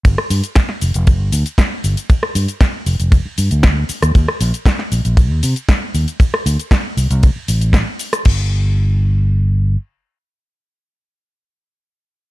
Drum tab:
CC |----------------|----------------|----------------|----------------|
RD |x---x---x---x---|x---x---x---x---|x---x---x---x---|x---x---x---x---|
HH |x-oxx-oxx-oxx-ox|x-oxx-oxx-oxx-ox|x-oxx-oxx-oxx-ox|x-oxx-oxx-oxx-ox|
SH |x-xxx-xxx-xxx-xx|x-xxx-xxx-xxx-xx|x-xxx-xxx-xxx-xx|x-xxx-xxx-xxx-xx|
SD |-r--oo------o---|-r--o-------o--r|-r--oo------o---|-r--o-------o--r|
BD |o---o---o---o---|o---o---o---o---|o---o---o---o---|o---o---o---o---|

CC |x---------------|----------------|
RD |----------------|----------------|
HH |----------------|----------------|
SH |----------------|----------------|
SD |----------------|----------------|
BD |o---------------|----------------|